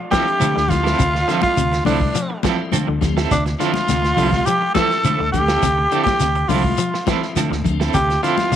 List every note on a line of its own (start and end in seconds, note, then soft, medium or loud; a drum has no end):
0.11 0.34 E3 medium
0.11 0.29 F3 medium
0.11 0.42 F3 medium
0.11 0.30 C4 medium
0.11 0.42 C4 medium
0.11 0.42 D4 medium
0.11 0.30 E4 medium
0.11 0.71 G4 loud
0.11 0.72 G4 loud
0.11 0.30 A4 medium
0.11 kick medium
0.11 snare medium
0.11 closed hi-hat medium
0.11 high conga loud
0.11 shekere soft
0.28 closed hi-hat soft
0.40 0.53 D3 loud
0.40 0.56 F3 medium
0.40 0.54 C4 medium
0.40 0.53 E4 medium
0.40 0.53 A4 medium
0.40 closed hi-hat medium
0.40 high conga medium
0.40 shekere medium
0.55 0.67 D2 medium
0.55 0.77 D3 medium
0.55 muted clean electric guitar stroke soft
0.55 snare soft
0.68 0.93 D2 medium
0.68 0.99 F3 medium
0.68 1.00 C4 medium
0.68 1.00 E4 medium
0.68 1.42 F4 loud
0.68 1.42 F4 medium
0.68 muted clean electric guitar stroke soft
0.68 kick medium
0.68 snare soft
0.68 closed hi-hat medium
0.68 high conga medium
0.68 low conga medium
0.68 shekere soft
0.84 1.02 C4 soft
0.84 1.02 E4 soft
0.84 1.02 A4 medium
0.84 snare medium
0.84 closed hi-hat soft
0.99 1.22 D2 medium
0.99 1.20 C3 medium
0.99 kick medium
0.99 closed hi-hat medium
0.99 shekere medium
1.13 muted clean electric guitar stroke soft
1.13 snare soft
1.28 1.49 D3 medium
1.28 1.43 F3 medium
1.28 1.58 F3 medium
1.28 1.42 C4 medium
1.28 1.58 C4 medium
1.28 1.42 E4 medium
1.28 1.58 E4 medium
1.28 1.42 A4 medium
1.28 snare soft
1.28 closed hi-hat medium
1.28 shekere soft
1.42 1.83 F4 medium
1.42 1.83 F4 loud
1.42 muted clean electric guitar stroke soft
1.42 kick medium
1.42 closed hi-hat soft
1.42 high conga medium
1.57 1.80 D2 loud
1.57 1.78 C3 medium
1.57 closed hi-hat medium
1.57 shekere medium
1.72 muted clean electric guitar stroke soft
1.72 snare soft
1.72 closed hi-hat soft
1.85 2.09 C2 medium
1.85 2.07 D3 medium
1.85 2.15 F3 medium
1.85 2.01 F3 medium
1.85 2.15 C4 medium
1.85 2.00 C4 medium
1.85 2.40 D4 medium
1.85 2.15 E4 medium
1.85 2.00 E4 medium
1.85 2.00 A4 medium
1.85 open hi-hat medium
1.85 high conga medium
1.85 low conga medium
1.85 shekere soft
2.01 muted clean electric guitar stroke soft
2.01 kick medium
2.15 2.36 F3 medium
2.15 muted clean electric guitar stroke soft
2.15 closed hi-hat medium
2.15 shekere medium
2.30 muted clean electric guitar stroke soft
2.43 2.65 E3 medium
2.43 2.61 F3 medium
2.43 2.73 F3 medium
2.43 2.73 C4 medium
2.43 2.62 C4 medium
2.43 2.73 E4 medium
2.43 2.62 E4 medium
2.43 2.62 A4 medium
2.43 kick medium
2.43 snare medium
2.43 closed hi-hat medium
2.43 high conga loud
2.43 shekere soft
2.72 2.84 D3 loud
2.72 2.87 F3 medium
2.72 2.87 C4 medium
2.72 2.86 A4 medium
2.72 closed hi-hat medium
2.72 high conga medium
2.72 shekere medium
2.87 2.99 D2 medium
2.87 3.09 D3 medium
2.87 muted clean electric guitar stroke soft
3.01 3.25 D2 medium
3.01 3.31 F3 medium
3.01 3.31 C4 medium
3.01 3.31 G4 loud
3.01 muted clean electric guitar stroke soft
3.01 kick medium
3.01 snare soft
3.01 closed hi-hat soft
3.01 high conga medium
3.01 low conga medium
3.01 shekere soft
3.17 3.34 C4 soft
3.17 3.34 E4 medium
3.17 3.34 A4 medium
3.17 snare medium
3.17 closed hi-hat soft
3.31 3.53 D2 loud
3.31 3.52 C3 medium
3.31 3.44 D4 medium
3.31 3.45 D4 medium
3.31 kick medium
3.31 snare soft
3.31 closed hi-hat medium
3.31 shekere medium
3.46 muted clean electric guitar stroke soft
3.46 snare soft
3.46 closed hi-hat soft
3.59 3.81 D3 medium
3.59 3.89 F3 medium
3.59 3.74 F3 medium
3.59 3.89 C4 medium
3.59 3.73 C4 medium
3.59 3.89 D4 medium
3.59 3.72 E4 medium
3.59 4.47 F4 medium
3.59 4.47 F4 loud
3.59 3.72 A4 medium
3.59 snare soft
3.59 closed hi-hat medium
3.59 shekere soft
3.73 muted clean electric guitar stroke soft
3.73 snare soft
3.73 closed hi-hat soft
3.73 high conga medium
3.88 4.11 D2 loud
3.88 4.10 C3 medium
3.88 snare soft
3.88 closed hi-hat medium
3.88 high conga medium
3.88 shekere medium
4.02 muted clean electric guitar stroke soft
4.02 snare soft
4.02 closed hi-hat soft
4.17 4.40 C2 loud
4.17 4.39 D3 medium
4.17 4.32 F3 medium
4.17 4.47 F3 medium
4.17 4.31 C4 medium
4.17 4.47 C4 medium
4.17 4.31 E4 medium
4.17 4.47 G4 medium
4.17 4.31 A4 medium
4.17 open hi-hat medium
4.17 high conga medium
4.17 low conga medium
4.17 shekere soft
4.32 muted clean electric guitar stroke soft
4.32 kick medium
4.32 snare soft
4.32 high conga medium
4.45 4.68 F3 medium
4.45 4.74 G4 medium
4.45 4.74 G4 loud
4.45 muted clean electric guitar stroke soft
4.45 closed hi-hat medium
4.45 shekere medium
4.62 muted clean electric guitar stroke soft
4.75 4.97 E3 medium
4.75 5.04 F3 medium
4.75 4.93 F3 medium
4.75 5.04 C4 medium
4.75 4.93 C4 medium
4.75 5.04 E4 medium
4.75 4.93 E4 medium
4.75 5.29 A4 loud
4.75 4.93 A4 loud
4.75 kick medium
4.75 snare medium
4.75 closed hi-hat medium
4.75 high conga loud
4.75 shekere soft
4.91 snare soft
4.91 closed hi-hat soft
5.04 5.16 D3 loud
5.04 5.19 F3 medium
5.04 5.20 C4 medium
5.04 5.19 E4 medium
5.04 5.19 A4 medium
5.04 closed hi-hat medium
5.04 high conga medium
5.04 shekere medium
5.20 5.30 D2 medium
5.20 5.41 D3 medium
5.20 muted clean electric guitar stroke soft
5.32 5.56 D2 medium
5.32 5.62 F3 medium
5.32 5.63 C4 medium
5.32 6.01 G4 loud
5.32 5.63 G4 medium
5.32 6.02 G4 medium
5.32 muted clean electric guitar stroke soft
5.32 kick medium
5.32 closed hi-hat medium
5.32 high conga medium
5.32 low conga medium
5.32 shekere soft
5.48 5.66 C4 soft
5.48 5.66 E4 soft
5.48 5.65 A4 medium
5.48 snare medium
5.48 closed hi-hat soft
5.63 5.85 D2 medium
5.63 5.84 C3 medium
5.63 kick loud
5.63 snare soft
5.63 closed hi-hat medium
5.63 shekere medium
5.78 muted clean electric guitar stroke soft
5.90 6.13 D3 medium
5.90 6.20 F3 medium
5.90 6.20 C4 medium
5.90 6.06 C4 medium
5.90 6.20 E4 medium
5.90 6.05 E4 medium
5.90 6.06 A4 medium
5.90 closed hi-hat medium
5.90 shekere soft
6.04 6.50 G4 loud
6.04 6.51 G4 medium
6.04 kick medium
6.04 snare soft
6.04 closed hi-hat soft
6.04 high conga medium
6.20 6.43 D2 medium
6.20 6.42 C3 medium
6.20 snare soft
6.20 closed hi-hat medium
6.20 shekere medium
6.35 muted clean electric guitar stroke soft
6.35 closed hi-hat soft
6.48 6.72 C2 loud
6.48 6.71 D3 medium
6.48 6.78 F3 medium
6.48 6.65 F3 medium
6.48 6.78 C4 medium
6.48 6.64 C4 medium
6.48 6.78 E4 medium
6.48 6.64 E4 medium
6.48 7.07 F4 medium
6.48 6.63 A4 medium
6.48 open hi-hat medium
6.48 high conga medium
6.48 low conga medium
6.48 shekere soft
6.64 muted clean electric guitar stroke soft
6.64 kick medium
6.64 high conga medium
6.78 6.99 F3 medium
6.78 muted clean electric guitar stroke soft
6.78 closed hi-hat medium
6.78 shekere medium
6.94 muted clean electric guitar stroke soft
6.94 snare soft
7.05 7.29 E3 medium
7.05 7.36 F3 medium
7.05 7.25 F3 medium
7.05 7.36 C4 medium
7.05 7.25 C4 medium
7.05 7.36 E4 medium
7.05 7.26 E4 medium
7.05 7.25 A4 medium
7.05 kick medium
7.05 snare medium
7.05 closed hi-hat medium
7.05 high conga loud
7.05 shekere soft
7.23 snare soft
7.36 7.48 D3 medium
7.36 7.51 F3 medium
7.36 7.50 C4 medium
7.36 7.50 E4 medium
7.36 7.49 A4 medium
7.36 snare soft
7.36 closed hi-hat medium
7.36 high conga medium
7.36 shekere medium
7.51 7.62 D2 medium
7.51 7.72 D3 medium
7.51 muted clean electric guitar stroke medium
7.51 snare soft
7.64 7.88 D2 medium
7.64 7.94 F3 medium
7.64 7.94 C4 medium
7.64 7.94 D4 loud
7.64 muted clean electric guitar stroke soft
7.64 kick medium
7.64 closed hi-hat medium
7.64 low conga medium
7.64 shekere soft
7.80 7.97 C4 soft
7.80 7.97 E4 soft
7.80 7.97 A4 medium
7.80 snare medium
7.80 closed hi-hat soft
7.94 8.17 D2 loud
7.94 8.15 C3 medium
7.94 8.21 G4 loud
7.94 8.22 G4 medium
7.94 kick medium
7.94 snare soft
7.94 closed hi-hat medium
7.94 shekere medium
8.09 muted clean electric guitar stroke soft
8.09 snare soft
8.09 closed hi-hat soft
8.23 8.44 D3 medium
8.23 8.52 F3 medium
8.23 8.37 C4 medium
8.23 8.52 C4 medium
8.23 8.37 E4 medium
8.23 8.52 E4 medium
8.23 8.56 F4 medium
8.23 8.36 A4 medium
8.23 snare soft
8.23 closed hi-hat medium
8.23 shekere soft
8.37 muted clean electric guitar stroke soft
8.37 snare soft
8.37 closed hi-hat soft
8.37 high conga medium
8.52 8.56 D2 medium
8.52 8.56 C3 medium
8.52 closed hi-hat medium
8.52 high conga medium
8.52 shekere medium